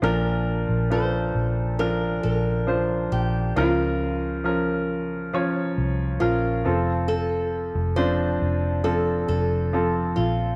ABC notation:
X:1
M:4/4
L:1/16
Q:1/4=68
K:Fmix
V:1 name="Nylon-string guitar"
B4 c4 B2 B4 G2 | F12 F4 | A4 c4 A2 A4 F2 |]
V:2 name="Grand piano"
[F,DB]4 [F,DA]4 [F,DB]4 [F,Dc]4 | [F,_DB]4 [F,DB]4 [F,D_d]4 [F,DB]2 [F,CA]2- | [F,CA]4 [F,CD]4 [F,CA]4 [F,CA]4 |]
V:3 name="Grand piano" clef=bass
B,,6 z8 z2 | _D,6 z8 z2 | z16 |]
V:4 name="Fingered electric bass" clef=bass
B,,,3 B,,,3 B,,,4 B,,,4 B,,,2 | _D,,8- D,, z C,,2 B,,,2 F,,,2- | F,,,3 F,,,3 F,,,4 F,,,4 B,,,2 |]